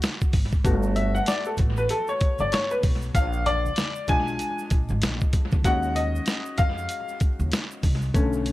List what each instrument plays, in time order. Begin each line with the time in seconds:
Already playing: upright piano F#4
0.02 snare, closed hi-hat, maracas
0.21 kick, maracas
0.33 upright bass G#1, kick, open hi-hat, low conga, maracas
0.52 kick, maracas
0.64 upright bass G1, upright piano A3 B3 F#4, kick, closed hi-hat, maracas
0.83 maracas
0.96 upright piano E5, closed hi-hat, maracas
1.15 upright piano F#5, maracas
1.26 upright piano D5, snare, closed hi-hat, maracas
1.45 upright piano A4, maracas
1.57 upright bass A1, kick, closed hi-hat, low conga, maracas
1.77 upright piano B4, maracas
1.89 upright piano A4, closed hi-hat, maracas
2.08 upright piano C#5, maracas
2.20 kick, closed hi-hat, maracas
2.39 upright bass G1, upright piano D5, high conga, maracas
2.52 upright piano C#5, snare, closed hi-hat, maracas
2.71 upright piano B4, maracas
2.83 upright bass B1, kick, open hi-hat, low conga, maracas
3.02 maracas
3.15 upright bass A#1, upright piano F5, kick, closed hi-hat, maracas
3.33 maracas
3.46 upright piano D5, closed hi-hat, low conga, maracas
3.66 high conga, maracas
3.76 snare, closed hi-hat, high conga, maracas
3.95 maracas
4.08 upright bass B1, upright piano G#3 D4 F4 G#5, kick, closed hi-hat, low conga, maracas
4.27 maracas
4.39 closed hi-hat, maracas
4.58 maracas
4.70 upright bass A#1, kick, closed hi-hat, maracas
4.89 upright bass G#1, high conga, maracas
5.02 upright bass A#1, snare, closed hi-hat, maracas
5.21 kick, maracas
5.33 upright bass F2, kick, closed hi-hat, low conga, maracas
5.52 upright bass E2, kick, high conga, maracas
5.64 upright bass D#2, upright piano G#3 C#4 D#4 F#4 F#5, kick, closed hi-hat, maracas
5.83 maracas
5.96 upright piano D#5, closed hi-hat, maracas
6.15 maracas
6.26 snare, closed hi-hat, maracas
6.46 maracas
6.58 upright bass F2, upright piano F5, kick, closed hi-hat, low conga, maracas
6.78 maracas
6.89 closed hi-hat, maracas
7.08 maracas
7.20 kick, closed hi-hat, maracas
7.40 upright bass D#2, high conga, maracas
7.52 snare, closed hi-hat, maracas
7.71 maracas
7.83 upright bass C2, kick, open hi-hat, low conga, maracas
8.02 maracas
8.14 upright bass B1, upright piano D3 A3 C#4, kick, closed hi-hat, maracas
8.33 maracas
8.46 closed hi-hat, maracas